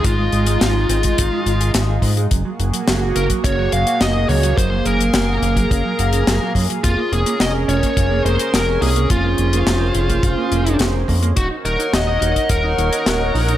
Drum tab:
HH |x-xxx-xxx-xxx-ox|x-xxx-xxx-xxx-ox|x-xxx-xxx-xxx-ox|x-xxx-xxx-xxx-ox|
SD |----o-------o---|----o-------o---|----o-------o---|----o-------o---|
BD |o------oo-----o-|o------oo-------|o------oo-----o-|o------oo-------|

HH |x-xxx-xxx-xxx-ox|x-xxx-xxx-xxx-ox|
SD |----o-------o---|----o-------o---|
BD |o------oo-----o-|o------oo-------|